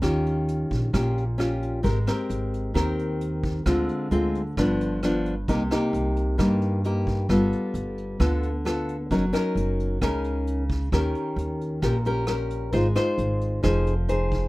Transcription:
0.02 upright bass D#2, nylon-string guitar D#3 C#4 F4 G4, kick, cross-stick, closed hi-hat
0.26 closed hi-hat
0.48 closed hi-hat
0.71 upright bass A#1, kick, closed hi-hat
0.93 upright bass A#1, nylon-string guitar A#2 C#4 F4 G4, kick, cross-stick, closed hi-hat
1.17 closed hi-hat
1.38 nylon-string guitar C#4 F4 G4, cross-stick, closed hi-hat
1.62 closed hi-hat
1.83 upright bass G#1, nylon-string guitar G#3 C4 G4 A#4, kick, closed hi-hat
2.07 nylon-string guitar C4 G4 A#4, cross-stick, closed hi-hat
2.29 upright bass G#1, closed hi-hat
2.54 closed hi-hat
2.74 upright bass D#2, nylon-string guitar D#3 C4 G4 A#4, kick, cross-stick, closed hi-hat
2.99 closed hi-hat
3.21 closed hi-hat
3.43 kick, closed hi-hat
3.66 upright bass D2, nylon-string guitar D3 G#3 C4 F4, kick, cross-stick, closed hi-hat
3.89 closed hi-hat
4.11 upright bass D2, nylon-string guitar G#3 C4 F4, closed hi-hat
4.35 closed hi-hat
4.57 upright bass G1, nylon-string guitar G2 F3 B3 D4, kick, cross-stick, closed hi-hat
4.81 closed hi-hat
5.03 nylon-string guitar F3 B3 D4, cross-stick, closed hi-hat
5.26 closed hi-hat
5.48 upright bass C2, nylon-string guitar C3 A#3 D#4 G4, kick, closed hi-hat
5.71 nylon-string guitar A#3 D#4 G4, cross-stick, closed hi-hat
5.93 upright bass C2, closed hi-hat
6.16 closed hi-hat
6.38 nylon-string guitar G2 A#3 D#4 G4, upright bass G2, kick, cross-stick, closed hi-hat
6.61 closed hi-hat
6.84 nylon-string guitar A#3 D#4 G4, closed hi-hat
7.07 kick, closed hi-hat
7.29 upright bass G1, nylon-string guitar G3 B3 F4 A4, kick, cross-stick, closed hi-hat
7.52 closed hi-hat
7.74 upright bass G1, closed hi-hat
7.98 closed hi-hat
8.20 upright bass D2, nylon-string guitar D3 B3 F4 A4, kick, cross-stick, closed hi-hat
8.43 closed hi-hat
8.65 nylon-string guitar B3 F4 A4, cross-stick, closed hi-hat
8.89 closed hi-hat
9.11 upright bass F#1, nylon-string guitar F#3 C#4 D#4 A#4, kick, closed hi-hat
9.33 nylon-string guitar C#4 D#4 A#4, cross-stick, closed hi-hat
9.55 upright bass F#1, closed hi-hat
9.80 closed hi-hat
10.02 upright bass C#2, nylon-string guitar C#3 C#4 D#4 A#4, kick, cross-stick, closed hi-hat
10.24 closed hi-hat
10.47 closed hi-hat
10.70 kick, closed hi-hat
10.92 upright bass D#2, nylon-string guitar D#3 C#4 G4 A#4, kick, cross-stick, closed hi-hat
11.15 closed hi-hat
11.36 upright bass D#2, closed hi-hat
11.61 closed hi-hat
11.82 upright bass A#1, nylon-string guitar A#2 C#4 G4 A#4, kick, cross-stick, closed hi-hat
12.05 nylon-string guitar C#4 G4 A#4, closed hi-hat
12.27 nylon-string guitar C#4 G4 A#4, cross-stick, closed hi-hat
12.50 closed hi-hat
12.72 upright bass G#1, nylon-string guitar G#3 D#4 F4 C5, kick, closed hi-hat
12.95 nylon-string guitar D#4 F4 C5, cross-stick, closed hi-hat
13.18 upright bass G#1, closed hi-hat
13.41 closed hi-hat
13.63 upright bass F1, nylon-string guitar F3 D#4 G#4 C5, kick, cross-stick, closed hi-hat
13.86 closed hi-hat
14.09 nylon-string guitar D#4 G#4 C5, closed hi-hat
14.32 kick, closed hi-hat

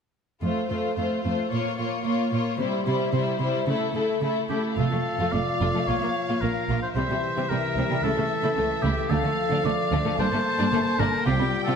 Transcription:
0.42 cello section F2, viola section A3, violin section F4 C5
0.69 cello section F2, viola section A3, violin section F4 C5
0.97 cello section F2, viola section A3, violin section F4 C5
1.24 cello section F2, viola section A3, violin section F4 C5
1.51 cello section A#2, viola section A#3, violin section F4 C#5
1.78 cello section A#2, viola section A#3, violin section F4 C#5
2.04 cello section A#2, viola section A#3, violin section F4 C#5
2.32 cello section A#2, viola section A#3, violin section F4 C#5
2.58 cello section C3, viola section G3, violin section E4 C5
2.86 cello section C3, viola section G3, violin section E4 C5
3.12 cello section C3, viola section G3, violin section E4 C5
3.39 cello section C3, viola section G3, violin section E4 C5
3.67 cello section C#3, viola section A3, violin section E4 A4
3.94 cello section C#3, viola section A3, violin section E4 A4
4.21 cello section C#3, viola section A3, violin section E4 A4
4.49 cello section C#3, viola section A3, violin section E4 A4, oboe G4
4.77 double bass section F1, cello section F2, french horn section F3 F4, viola section A3, violin section F4 F5, oboe A4
4.91 cello section F2, violin section A3, viola section A3
5.19 cello section F2, viola section A3, violin section F4
5.32 double bass section F1, cello section F2, violin section A3, viola section A3, oboe D5
5.60 double bass section F1, cello section F2, viola section A3, violin section F4
5.73 cello section F2, viola section A3, violin section A3
5.88 double bass section A#1, cello section A#2, viola section A#3, violin section F4, oboe C#5
6.02 cello section A#2, viola section A#3, violin section A#3
6.28 cello section A#2, viola section A#3, violin section F4
6.41 double bass section A#1, cello section A#2, violin section A#3, viola section A#3, oboe A#4
6.69 double bass section A#1, cello section A#2, viola section A#3, violin section F4
6.82 oboe C5
6.95 double bass section C2, cello section C3, french horn section E3 G4, viola section G3, violin section C4 E5, oboe C5
7.10 cello section C3, violin section G3, viola section G3
7.37 cello section C3, viola section G3, violin section C4
7.49 double bass section C2, cello section C3, violin section G3, viola section G3, oboe A#4
7.76 double bass section C2, cello section C3, viola section G3, violin section C4
7.90 cello section C3, violin section G3, viola section G3
8.02 double bass section C#2, cello section C#3, viola section A3, violin section E4, french horn section A4, oboe A4
8.17 cello section C#3, viola section A3, violin section A3
8.43 cello section C#3, viola section A3, violin section E4
8.57 double bass section C#2, cello section C#3, viola section A3, violin section A3
8.82 double bass section C#2, cello section C#3, viola section A3, violin section E4, oboe G4
9.10 double bass section D2, cello section D3, french horn section F3, viola section A3, violin section D4 F5, oboe A4
9.24 cello section D3, violin section A3, viola section A3
9.51 cello section D3, viola section A3, violin section D4
9.65 double bass section D2, cello section D3, violin section A3, viola section A3, oboe D5
9.92 double bass section D2, cello section D3, viola section A3, violin section D4
10.05 cello section D3, violin section A3, viola section A3
10.19 double bass section G1, cello section G2, french horn section A#3, viola section A#3, violin section D4 A5, oboe C5
10.33 cello section G2, violin section A3, viola section A#3
10.59 cello section G2, viola section A#3, violin section D4
10.72 double bass section G1, cello section G2, violin section A3, viola section A#3
10.99 double bass section G1, cello section G2, viola section A#3, violin section D4, oboe A#4
11.26 double bass section C2, cello section C3, french horn section G3 F4, viola section C4, violin section F4 G5, oboe G4
11.39 cello section C3, violin section G3, viola section C4
11.64 cello section C3, viola section C4, violin section F4, oboe A4

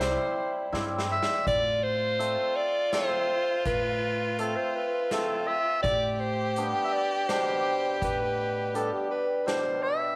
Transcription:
Already playing: upright bass C2, violin E4, clarinet C5
0.01 hammered dulcimer G3 C4 E4, snare, closed hi-hat
0.72 upright bass G2, hammered dulcimer G3 C4 E4, snare
0.99 snare
1.11 clarinet E5
1.23 snare
1.47 upright bass A2, violin F4, clarinet D5, kick, closed hi-hat
1.83 clarinet C5
2.19 hammered dulcimer A3 C4 E5, closed hi-hat
2.56 clarinet D5
2.92 hammered dulcimer A3 C4 E5, clarinet C5, snare, closed hi-hat
3.65 upright bass A2, clarinet B4, kick, closed hi-hat
4.39 hammered dulcimer A3 C4 E5, clarinet A4, closed hi-hat
4.56 clarinet C5
4.75 clarinet B4
5.11 hammered dulcimer A3 C4 E5, clarinet A4, snare, closed hi-hat
5.47 clarinet E5
5.83 upright bass A2, violin G4, clarinet D5, kick, closed hi-hat
6.13 clarinet D5
6.20 clarinet C5
6.56 hammered dulcimer G3 B3 D4, closed hi-hat
6.84 clarinet E5
6.93 clarinet D5
7.28 hammered dulcimer B2 G3 D4, clarinet C5, snare, closed hi-hat
8.02 upright bass A2, clarinet B4, kick, closed hi-hat
8.74 hammered dulcimer G3 B3 D4, clarinet A4, closed hi-hat
8.93 clarinet G4
9.11 clarinet B4
9.46 hammered dulcimer B2 G3 D4, clarinet C5, snare, closed hi-hat
9.83 clarinet E5

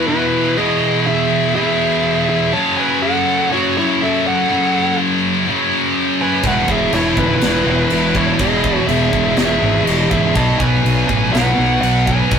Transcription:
Already playing: distorted electric guitar E2 B2 E3
0.07 lead electric guitar E4 B4
0.56 distorted electric guitar E2 B2 E3, lead electric guitar G#4 D#5
1.07 lead electric guitar G#4 E5
1.55 distorted electric guitar E2 B2 E3, lead electric guitar G#4 E5
2.29 lead electric guitar G#4 E5
2.53 distorted electric guitar F#2 C#3 F#3, lead electric guitar C#5 A5
2.77 lead electric guitar B4 G#5
3.02 lead electric guitar A4 F#5
3.50 distorted electric guitar F#2 C#3 F#3, lead electric guitar F#4 C#5
3.78 lead electric guitar E4 C#5
4.02 lead electric guitar A4 E5
4.26 lead electric guitar A4 F#5
4.48 distorted electric guitar F#2 C#3 F#3
5.46 distorted electric guitar F#2 C#3 F#3
6.21 lead electric guitar B4 G#5
6.43 fingered electric bass E1, distorted electric guitar E2 B2 E3, kick, crash
6.47 lead electric guitar B4 F#5
6.68 fingered electric bass E1, lead electric guitar G#4 E5, kick
6.93 fingered electric bass E1, lead electric guitar E4 C#5, crash
7.17 fingered electric bass C#1, lead electric guitar E4 B4, kick
7.41 fingered electric bass E1, distorted electric guitar E2 B2 E3, snare, crash
7.66 fingered electric bass E1
7.90 fingered electric bass E1, lead electric guitar E4 B4, crash
8.15 lead electric guitar E4 C#5, kick
8.38 fingered electric bass E1, distorted electric guitar E2 B2 E3, lead electric guitar G#4 D#5, kick, crash
8.64 kick
8.88 fingered electric bass E1, lead electric guitar G#4 E5, crash
9.13 fingered electric bass E1, kick
9.37 fingered electric bass E1, distorted electric guitar E2 B2 E3, lead electric guitar G#4 E5, snare, crash
9.62 fingered electric bass G#1
9.86 fingered electric bass E1, lead electric guitar G4 D#5, crash
10.11 fingered electric bass C#1, lead electric guitar G#4 E5, kick
10.35 fingered electric bass B1, distorted electric guitar B2 F#3 B3, lead electric guitar D#5 A5, kick, crash
10.60 fingered electric bass B1, lead electric guitar B4 G#5, kick
10.85 fingered electric bass B1, crash
11.09 fingered electric bass A1, kick
11.33 fingered electric bass B1, distorted electric guitar B2 F#3 B3, lead electric guitar B4 F#5, snare, crash
11.58 fingered electric bass B1
11.81 fingered electric bass B1, lead electric guitar B4 F#5, crash
12.07 lead electric guitar B4 G#5, kick
12.31 fingered electric bass B1, distorted electric guitar B2 F#3 B3, kick, crash

